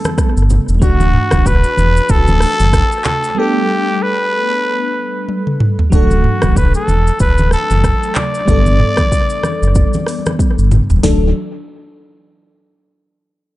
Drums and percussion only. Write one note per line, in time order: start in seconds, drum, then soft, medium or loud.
0.05 cross-stick loud
0.05 high conga medium
0.05 shaker medium
0.18 kick loud
0.18 cross-stick medium
0.18 shaker medium
0.37 shaker soft
0.50 low conga medium
0.50 shaker medium
0.69 shaker soft
0.82 kick loud
0.82 low conga medium
0.82 shaker medium
1.00 high conga medium
1.00 shaker medium
1.13 mid tom medium
1.31 kick medium
1.31 cross-stick loud
1.31 high conga medium
1.31 shaker medium
1.46 kick loud
1.46 low conga medium
1.46 shaker loud
1.64 shaker medium
1.77 high conga medium
1.77 shaker medium
1.97 shaker medium
2.09 kick loud
2.09 shaker medium
2.27 high conga medium
2.27 shaker medium
2.40 cross-stick medium
2.40 open hi-hat medium
2.40 shaker medium
2.60 high conga medium
2.60 shaker medium
2.73 kick loud
2.73 cross-stick loud
2.73 shaker medium
2.92 shaker soft
3.04 clap loud
3.04 low conga medium
3.04 shaker medium
3.24 shaker soft
5.29 high tom medium
5.47 mid tom medium
5.60 mid tom loud
5.79 floor tom loud
5.92 kick loud
5.92 low conga medium
5.92 shaker medium
6.11 high conga medium
6.11 shaker medium
6.24 mid tom medium
6.42 kick medium
6.42 cross-stick loud
6.42 high conga medium
6.42 shaker soft
6.56 kick loud
6.56 low conga medium
6.56 shaker medium
6.74 shaker medium
6.88 high conga medium
6.88 shaker medium
7.07 shaker soft
7.20 kick loud
7.20 shaker medium
7.38 high conga medium
7.38 shaker soft
7.51 cross-stick medium
7.51 shaker medium
7.70 high conga medium
7.70 shaker medium
7.84 kick loud
7.84 cross-stick medium
7.84 shaker medium
8.03 shaker soft
8.15 clap loud
8.15 low conga medium
8.15 shaker medium
8.35 shaker soft
8.48 kick loud
8.48 low conga medium
8.48 shaker medium
8.66 high conga medium
8.66 shaker medium
8.79 mid tom medium
8.97 kick medium
8.97 cross-stick loud
8.97 high conga medium
8.97 shaker medium
9.12 kick loud
9.12 low conga medium
9.12 shaker medium
9.30 shaker medium
9.43 cross-stick loud
9.43 high conga medium
9.43 shaker medium
9.63 shaker soft
9.75 kick loud
9.75 shaker medium
9.93 high conga medium
9.93 shaker medium
10.07 cross-stick medium
10.07 open hi-hat medium
10.07 shaker medium
10.26 cross-stick loud
10.26 high conga medium
10.26 shaker medium
10.39 kick loud
10.39 high tom medium
10.39 shaker medium
10.58 shaker soft
10.71 mid tom loud
10.71 low conga medium
10.71 shaker medium
10.90 floor tom loud
10.90 shaker soft
11.03 kick loud
11.03 snare loud
11.03 open hi-hat medium
11.03 high conga medium